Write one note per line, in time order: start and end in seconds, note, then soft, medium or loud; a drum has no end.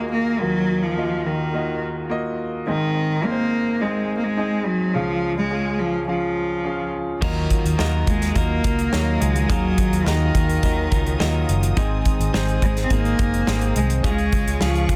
0.00 0.36 D#2 medium
0.00 0.36 D#3 soft
0.00 0.40 A#3 medium
0.00 2.67 D#4 medium
0.00 0.40 F4 medium
0.00 0.41 F#4 medium
0.00 2.68 G#4 medium
0.00 0.98 D#5 medium
0.12 0.41 A#3 medium
0.40 2.63 D#2 soft
0.40 2.63 D#3 soft
0.40 0.84 F#3 medium
0.40 0.93 A#3 medium
0.40 0.93 F4 medium
0.40 0.93 F#4 medium
0.40 0.93 A#4 medium
0.82 1.27 F3 medium
0.96 1.50 A#3 medium
0.96 1.50 F4 medium
0.96 1.50 F#4 soft
0.96 1.50 D#5 medium
1.26 1.82 D#3 medium
1.53 2.07 A#3 medium
1.53 2.07 F4 medium
1.53 2.07 F#4 medium
1.53 2.07 D#5 medium
2.10 2.63 A#3 medium
2.10 2.63 F4 medium
2.10 2.64 F#4 medium
2.10 2.64 D#5 medium
2.66 4.91 G#1 soft
2.66 4.91 G#2 soft
2.66 3.26 D#3 medium
2.66 3.20 C4 medium
2.66 3.20 D#4 medium
2.66 3.21 G#4 medium
2.66 3.21 D#5 medium
3.23 3.82 A#3 medium
3.23 3.77 C4 medium
3.23 3.77 D#4 medium
3.23 3.78 G#4 medium
3.23 3.31 A#4 medium
3.32 3.81 C5 medium
3.80 4.16 G#3 medium
3.80 4.34 C4 medium
3.80 4.34 D#4 medium
3.80 4.34 G#4 medium
3.80 4.35 D#5 medium
4.17 4.25 A#3 medium
4.23 4.67 G#3 medium
4.37 4.90 C4 medium
4.37 4.91 D#4 medium
4.37 4.91 G#4 medium
4.37 4.91 D#5 medium
4.65 4.95 F#3 medium
4.94 7.18 C#2 soft
4.94 7.18 C#3 medium
4.94 5.37 F3 medium
4.94 5.47 C#4 medium
4.94 5.48 F4 medium
4.94 5.48 G#4 medium
4.94 5.48 F5 medium
5.37 5.81 G#3 medium
5.50 6.04 C#4 medium
5.50 6.04 F4 soft
5.50 6.05 G#4 soft
5.50 6.05 F5 medium
5.79 6.08 F3 medium
6.08 6.90 F3 medium
6.08 6.61 C#4 medium
6.08 6.61 F4 medium
6.08 6.62 G#4 medium
6.08 6.62 F5 medium
6.64 7.18 C#4 medium
6.64 7.18 F4 medium
6.64 7.19 G#4 medium
6.64 7.19 F5 medium
7.21 7.46 D#2 medium
7.21 7.78 D#3 medium
7.21 8.04 D#3 medium
7.21 7.78 F#3 medium
7.21 7.75 F#3 medium
7.21 7.75 A#3 medium
7.21 7.79 D#4 medium
7.21 7.75 F4 medium
7.21 7.79 F4 medium
7.21 11.73 A#4 medium
7.21 7.79 A#4 medium
7.21 11.73 D#5 medium
7.21 7.76 D#5 medium
7.21 11.73 F5 medium
7.21 14.00 D#6 medium
7.21 kick loud
7.21 crash medium
7.50 kick medium
7.50 closed hi-hat medium
7.65 7.76 D#2 medium
7.65 closed hi-hat soft
7.78 8.03 D#2 medium
7.78 8.07 D#3 medium
7.78 8.07 F#3 medium
7.78 8.32 A#3 medium
7.78 8.08 D#4 medium
7.78 8.32 F4 medium
7.78 8.07 F4 medium
7.78 8.32 F#4 medium
7.78 8.05 A#4 medium
7.78 8.32 D#5 medium
7.78 snare medium
8.06 8.31 D#2 medium
8.06 8.37 G#3 medium
8.06 8.35 D#4 soft
8.06 8.36 F4 soft
8.06 8.35 A#4 soft
8.06 kick medium
8.06 closed hi-hat medium
8.22 snare soft
8.22 closed hi-hat soft
8.35 8.59 D#2 medium
8.35 8.64 F#3 medium
8.35 8.89 A#3 medium
8.35 9.22 A#3 medium
8.35 8.64 D#4 medium
8.35 8.89 F4 medium
8.35 8.64 F4 medium
8.35 8.89 F#4 medium
8.35 8.62 A#4 medium
8.35 8.89 D#5 medium
8.35 kick medium
8.35 closed hi-hat medium
8.64 8.88 C#2 medium
8.64 8.92 D#4 soft
8.64 8.93 F4 soft
8.64 8.92 A#4 medium
8.64 kick medium
8.64 closed hi-hat medium
8.79 closed hi-hat soft
8.92 9.16 D#2 medium
8.92 9.49 D#3 medium
8.92 9.46 F#3 medium
8.92 9.48 F#3 medium
8.92 9.45 A#3 medium
8.92 9.50 D#4 medium
8.92 9.46 F4 medium
8.92 9.50 F4 medium
8.92 9.50 A#4 medium
8.92 9.46 C#5 medium
8.92 snare medium
9.20 9.45 C#2 medium
9.20 9.50 G#3 medium
9.20 closed hi-hat medium
9.36 closed hi-hat soft
9.49 9.73 D#2 medium
9.49 10.05 D#3 medium
9.49 10.31 D#3 medium
9.49 10.07 F#3 medium
9.49 10.05 F#3 medium
9.49 10.03 F#3 medium
9.49 10.02 A#3 medium
9.49 10.07 D#4 medium
9.49 10.02 F4 medium
9.49 10.07 F4 medium
9.49 10.03 G#4 medium
9.49 10.07 A#4 medium
9.49 kick loud
9.49 closed hi-hat medium
9.78 kick medium
9.78 closed hi-hat medium
9.92 10.04 D#2 medium
9.92 closed hi-hat soft
10.05 10.30 D#2 medium
10.05 11.48 D#3 medium
10.05 10.35 D#3 medium
10.05 10.35 F#3 medium
10.05 10.59 A#3 medium
10.05 10.35 D#4 medium
10.05 10.59 F4 medium
10.05 10.35 F4 medium
10.05 10.60 F#4 medium
10.05 10.33 A#4 medium
10.05 10.60 D#5 medium
10.05 snare medium
10.34 10.58 D#2 medium
10.34 10.62 D#4 soft
10.34 10.64 F4 soft
10.34 10.63 A#4 medium
10.34 kick medium
10.34 closed hi-hat medium
10.49 closed hi-hat soft
10.62 10.87 D#2 medium
10.62 10.91 F#3 medium
10.62 11.16 A#3 medium
10.62 10.92 D#4 medium
10.62 11.16 F4 medium
10.62 10.91 F4 medium
10.62 11.17 F#4 medium
10.62 10.89 A#4 medium
10.62 11.17 D#5 medium
10.62 kick medium
10.62 closed hi-hat medium
10.91 11.15 C#2 medium
10.91 11.19 D#4 soft
10.91 11.20 F4 soft
10.91 11.20 A#4 medium
10.91 kick medium
10.91 closed hi-hat medium
11.06 closed hi-hat soft
11.19 11.44 D#2 medium
11.19 11.76 D#3 medium
11.19 11.77 F#3 medium
11.19 11.73 F#3 medium
11.19 11.73 A#3 medium
11.19 11.77 D#4 medium
11.19 11.73 F4 medium
11.19 11.77 F4 medium
11.19 11.78 A#4 medium
11.19 11.74 D#5 medium
11.19 snare medium
11.49 11.72 F#1 medium
11.49 closed hi-hat medium
11.63 closed hi-hat soft
11.76 12.00 G#1 loud
11.76 12.32 G#2 medium
11.76 12.58 G#2 medium
11.76 12.32 D#3 medium
11.76 12.34 G#3 medium
11.76 12.30 C4 medium
11.76 12.33 C4 medium
11.76 12.30 D#4 medium
11.76 12.34 D#4 medium
11.76 12.30 G#4 medium
11.76 12.35 G#4 medium
11.76 14.02 C5 medium
11.76 14.02 D#5 medium
11.76 12.31 D#5 medium
11.76 14.02 G#5 medium
11.76 kick loud
11.76 closed hi-hat medium
12.05 kick medium
12.05 closed hi-hat medium
12.20 12.31 G#1 medium
12.20 closed hi-hat medium
12.33 12.57 G#1 medium
12.33 12.62 G#2 medium
12.33 12.62 D#3 medium
12.33 12.62 G#3 medium
12.33 12.87 C4 medium
12.33 12.63 C4 medium
12.33 12.87 D#4 medium
12.33 12.61 D#4 medium
12.33 12.87 G#4 medium
12.33 12.60 G#4 medium
12.33 12.87 C5 medium
12.33 snare medium
12.48 closed hi-hat soft
12.61 12.85 G#1 medium
12.61 12.72 G#3 medium
12.61 12.89 G#3 soft
12.61 12.90 C4 soft
12.61 12.91 D#4 medium
12.61 12.90 G#4 medium
12.61 kick medium
12.61 closed hi-hat medium
12.77 snare soft
12.77 closed hi-hat soft
12.84 12.93 C4 medium
12.90 13.14 G#1 medium
12.90 13.19 G#3 medium
12.90 13.76 A#3 loud
12.90 13.44 C4 medium
12.90 13.19 C4 medium
12.90 13.44 D#4 medium
12.90 13.18 D#4 medium
12.90 13.44 G#4 medium
12.90 13.17 G#4 medium
12.90 13.44 D#5 medium
12.90 kick medium
12.90 closed hi-hat medium
13.05 closed hi-hat soft
13.18 13.43 F#1 medium
13.18 13.47 G#3 soft
13.18 13.47 C4 soft
13.18 13.47 D#4 soft
13.18 13.47 G#4 medium
13.18 kick medium
13.18 closed hi-hat medium
13.34 closed hi-hat soft
13.47 13.71 G#1 medium
13.47 14.04 G#2 medium
13.47 14.03 D#3 medium
13.47 14.04 G#3 medium
13.47 14.00 C4 medium
13.47 14.04 C4 medium
13.47 14.00 D#4 medium
13.47 14.05 D#4 medium
13.47 14.01 G#4 medium
13.47 14.05 G#4 medium
13.47 14.01 C5 medium
13.47 snare loud
13.61 closed hi-hat soft
13.76 13.99 C2 medium
13.76 13.89 G#3 medium
13.76 closed hi-hat medium
13.90 closed hi-hat soft
14.03 14.59 C#3 medium
14.03 14.85 C#3 medium
14.03 14.60 G#3 medium
14.03 14.63 G#3 medium
14.03 14.57 C#4 medium
14.03 14.61 C#4 medium
14.03 14.57 F4 medium
14.03 14.62 F4 medium
14.03 14.57 G#4 medium
14.03 14.96 G#4 medium
14.03 14.61 G#4 loud
14.03 14.96 C#5 medium
14.03 14.96 F5 medium
14.03 14.58 F5 medium
14.03 14.96 C#6 medium
14.03 kick medium
14.03 closed hi-hat medium
14.18 closed hi-hat soft
14.32 kick medium
14.32 closed hi-hat medium
14.47 14.59 C#2 medium
14.47 closed hi-hat medium
14.60 14.84 C#2 medium
14.60 14.89 C#3 medium
14.60 14.96 F3 medium
14.60 14.90 G#3 medium
14.60 14.96 C#4 medium
14.60 14.90 C#4 medium
14.60 14.96 F4 medium
14.60 14.89 F4 medium
14.60 14.96 G#4 medium
14.60 14.87 G#4 medium
14.60 14.96 F5 medium
14.60 snare medium
14.75 closed hi-hat soft
14.89 14.96 C#2 medium
14.89 14.96 C#4 soft
14.89 14.96 F4 soft
14.89 14.96 G#4 soft
14.89 kick medium
14.89 closed hi-hat medium